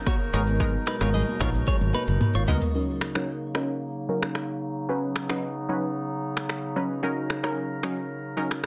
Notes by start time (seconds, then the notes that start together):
Already playing: C#3 F#3 D#4 A#4
0.06 F#4 C#5, finger snap, kick, cross-stick, high conga, shaker
0.33 G#1 B2 G#3 B3 D#4 G#4 A#4 C#5, high conga, shaker
0.47 shaker
0.60 G#3 B3 D#4 A#4, kick, low conga, shaker
0.87 D#4 B4, finger snap, cross-stick, shaker
1.01 G#1 G#3 B3 D#4 F4 A#4 C#5, finger snap, cross-stick, shaker
1.14 G#4 D#5, low conga, shaker
1.28 high conga
1.40 A#1 G#3 B3 D#4 F4 A#4 C#5, finger snap, kick, cross-stick, shaker
1.54 shaker
1.66 G#4 C#5, kick, high tom, shaker
1.81 G#1, high tom
1.95 D#4 B4, high conga, shaker
2.07 F#1, mid tom, shaker
2.20 mid tom, high conga, shaker
2.35 G#1 F4 C#5
2.48 C#2 G#3 B3 D#4 F#4 A#4 D#5, floor tom, high conga, low conga, shaker
2.61 floor tom, shaker
2.74 C#3 F#3 A#3 C#4 D#4 A#4
3.01 finger snap, cross-stick
3.15 F#3 C#4 D#4 A#4, finger snap, cross-stick
3.55 F#3 C#4 D#4 A#4, finger snap, cross-stick
4.09 F#3 C#4 D#4 A#4
4.22 finger snap, cross-stick
4.35 finger snap, cross-stick
4.89 F#3 B3 C#4 D#4 B4
5.16 finger snap, cross-stick
5.29 F#3 C#4 D#4 B4, finger snap, cross-stick
5.69 F#3 C#4 D#4 B4
6.37 finger snap, cross-stick
6.49 finger snap, cross-stick
6.76 F#3 C#4 D#4 B4
7.03 F#3 C#4 D#4 A#4
7.30 finger snap, cross-stick
7.43 F#3 C#4 D#4 A#4, finger snap, cross-stick
7.83 F#3 C#4 D#4 A#4, finger snap, cross-stick
8.37 F#3 C#4 D#4 A#4
8.51 finger snap, cross-stick